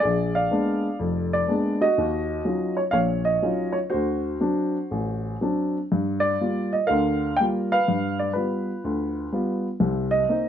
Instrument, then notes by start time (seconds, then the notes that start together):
grand piano
0.00 G#4 D5
0.05 A#1
0.35 D5 F5
0.51 G#3 A#3 B3 D4
0.99 F1 F2
1.33 D5
1.47 G#3 A#3 B3 D4
1.81 F#4 D#5
1.98 D#2
2.45 F#3 C#4 D#4 F4
2.77 C#5
2.91 A#1 A#2 C#5 F5
3.25 D#5
3.42 F#3 C#4 D#4 F4
3.72 C#5
3.90 F#4 C5
3.94 D2
4.40 F#3 C4 D4
4.91 A1
5.41 F#3 C4 D4
5.92 G2
6.20 D5
6.41 G3 A#3 F4
6.73 D#5
6.87 D2 D3 A#4 F5
7.37 G3 G5
7.41 A#3 F4
7.72 B4 F5
7.88 G2
8.19 D5
8.33 G3 B3 F4 B4
8.84 D2
9.32 G3 B3 F4
9.80 C2 C3
10.11 D#5
10.29 A#3 C4 D#4